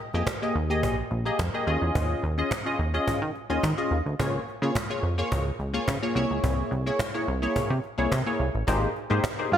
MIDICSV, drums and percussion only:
0, 0, Header, 1, 2, 480
1, 0, Start_track
1, 0, Key_signature, -4, "minor"
1, 0, Tempo, 560748
1, 1670, Time_signature, 4, 2, 24, 8
1, 8198, End_track
2, 0, Start_track
2, 0, Title_t, "Cajon"
2, 115, Note_on_c, 9, 38, 31
2, 200, Note_off_c, 9, 38, 0
2, 228, Note_on_c, 9, 36, 123
2, 232, Note_on_c, 9, 38, 122
2, 314, Note_off_c, 9, 36, 0
2, 318, Note_off_c, 9, 38, 0
2, 470, Note_on_c, 9, 38, 33
2, 556, Note_off_c, 9, 38, 0
2, 596, Note_on_c, 9, 38, 31
2, 682, Note_off_c, 9, 38, 0
2, 712, Note_on_c, 9, 36, 109
2, 798, Note_off_c, 9, 36, 0
2, 951, Note_on_c, 9, 38, 42
2, 1036, Note_off_c, 9, 38, 0
2, 1078, Note_on_c, 9, 38, 23
2, 1164, Note_off_c, 9, 38, 0
2, 1191, Note_on_c, 9, 36, 103
2, 1193, Note_on_c, 9, 38, 105
2, 1276, Note_off_c, 9, 36, 0
2, 1279, Note_off_c, 9, 38, 0
2, 1318, Note_on_c, 9, 38, 20
2, 1404, Note_off_c, 9, 38, 0
2, 1427, Note_on_c, 9, 38, 45
2, 1513, Note_off_c, 9, 38, 0
2, 1558, Note_on_c, 9, 38, 28
2, 1643, Note_off_c, 9, 38, 0
2, 1672, Note_on_c, 9, 36, 124
2, 1758, Note_off_c, 9, 36, 0
2, 1802, Note_on_c, 9, 38, 19
2, 1888, Note_off_c, 9, 38, 0
2, 1913, Note_on_c, 9, 38, 41
2, 1999, Note_off_c, 9, 38, 0
2, 2038, Note_on_c, 9, 38, 31
2, 2123, Note_off_c, 9, 38, 0
2, 2149, Note_on_c, 9, 36, 106
2, 2156, Note_on_c, 9, 38, 115
2, 2235, Note_off_c, 9, 36, 0
2, 2242, Note_off_c, 9, 38, 0
2, 2392, Note_on_c, 9, 38, 32
2, 2478, Note_off_c, 9, 38, 0
2, 2518, Note_on_c, 9, 38, 31
2, 2604, Note_off_c, 9, 38, 0
2, 2632, Note_on_c, 9, 36, 113
2, 2718, Note_off_c, 9, 36, 0
2, 2871, Note_on_c, 9, 38, 42
2, 2957, Note_off_c, 9, 38, 0
2, 2997, Note_on_c, 9, 38, 28
2, 3083, Note_off_c, 9, 38, 0
2, 3111, Note_on_c, 9, 36, 103
2, 3115, Note_on_c, 9, 38, 105
2, 3196, Note_off_c, 9, 36, 0
2, 3201, Note_off_c, 9, 38, 0
2, 3243, Note_on_c, 9, 38, 21
2, 3328, Note_off_c, 9, 38, 0
2, 3350, Note_on_c, 9, 38, 43
2, 3435, Note_off_c, 9, 38, 0
2, 3481, Note_on_c, 9, 38, 32
2, 3566, Note_off_c, 9, 38, 0
2, 3591, Note_on_c, 9, 36, 116
2, 3677, Note_off_c, 9, 36, 0
2, 3724, Note_on_c, 9, 38, 18
2, 3810, Note_off_c, 9, 38, 0
2, 3839, Note_on_c, 9, 38, 41
2, 3925, Note_off_c, 9, 38, 0
2, 3958, Note_on_c, 9, 38, 34
2, 4044, Note_off_c, 9, 38, 0
2, 4069, Note_on_c, 9, 36, 118
2, 4077, Note_on_c, 9, 38, 116
2, 4155, Note_off_c, 9, 36, 0
2, 4163, Note_off_c, 9, 38, 0
2, 4314, Note_on_c, 9, 38, 30
2, 4400, Note_off_c, 9, 38, 0
2, 4440, Note_on_c, 9, 38, 31
2, 4525, Note_off_c, 9, 38, 0
2, 4553, Note_on_c, 9, 36, 110
2, 4638, Note_off_c, 9, 36, 0
2, 4790, Note_on_c, 9, 38, 46
2, 4875, Note_off_c, 9, 38, 0
2, 4921, Note_on_c, 9, 38, 24
2, 5007, Note_off_c, 9, 38, 0
2, 5031, Note_on_c, 9, 36, 110
2, 5038, Note_on_c, 9, 38, 96
2, 5116, Note_off_c, 9, 36, 0
2, 5124, Note_off_c, 9, 38, 0
2, 5162, Note_on_c, 9, 38, 19
2, 5247, Note_off_c, 9, 38, 0
2, 5270, Note_on_c, 9, 38, 47
2, 5355, Note_off_c, 9, 38, 0
2, 5399, Note_on_c, 9, 38, 30
2, 5484, Note_off_c, 9, 38, 0
2, 5510, Note_on_c, 9, 36, 111
2, 5596, Note_off_c, 9, 36, 0
2, 5642, Note_on_c, 9, 38, 19
2, 5728, Note_off_c, 9, 38, 0
2, 5756, Note_on_c, 9, 38, 40
2, 5841, Note_off_c, 9, 38, 0
2, 5874, Note_on_c, 9, 38, 32
2, 5960, Note_off_c, 9, 38, 0
2, 5987, Note_on_c, 9, 36, 114
2, 5993, Note_on_c, 9, 38, 126
2, 6073, Note_off_c, 9, 36, 0
2, 6078, Note_off_c, 9, 38, 0
2, 6117, Note_on_c, 9, 38, 20
2, 6202, Note_off_c, 9, 38, 0
2, 6229, Note_on_c, 9, 38, 33
2, 6315, Note_off_c, 9, 38, 0
2, 6357, Note_on_c, 9, 38, 30
2, 6442, Note_off_c, 9, 38, 0
2, 6471, Note_on_c, 9, 36, 107
2, 6556, Note_off_c, 9, 36, 0
2, 6601, Note_on_c, 9, 38, 19
2, 6686, Note_off_c, 9, 38, 0
2, 6709, Note_on_c, 9, 38, 43
2, 6795, Note_off_c, 9, 38, 0
2, 6837, Note_on_c, 9, 38, 27
2, 6923, Note_off_c, 9, 38, 0
2, 6948, Note_on_c, 9, 36, 105
2, 6953, Note_on_c, 9, 38, 101
2, 7034, Note_off_c, 9, 36, 0
2, 7038, Note_off_c, 9, 38, 0
2, 7316, Note_on_c, 9, 38, 29
2, 7402, Note_off_c, 9, 38, 0
2, 7429, Note_on_c, 9, 36, 126
2, 7514, Note_off_c, 9, 36, 0
2, 7563, Note_on_c, 9, 38, 28
2, 7648, Note_off_c, 9, 38, 0
2, 7672, Note_on_c, 9, 38, 43
2, 7758, Note_off_c, 9, 38, 0
2, 7792, Note_on_c, 9, 38, 35
2, 7878, Note_off_c, 9, 38, 0
2, 7907, Note_on_c, 9, 36, 127
2, 7914, Note_on_c, 9, 38, 119
2, 7992, Note_off_c, 9, 36, 0
2, 8000, Note_off_c, 9, 38, 0
2, 8041, Note_on_c, 9, 38, 32
2, 8126, Note_off_c, 9, 38, 0
2, 8150, Note_on_c, 9, 38, 33
2, 8198, Note_off_c, 9, 38, 0
2, 8198, End_track
0, 0, End_of_file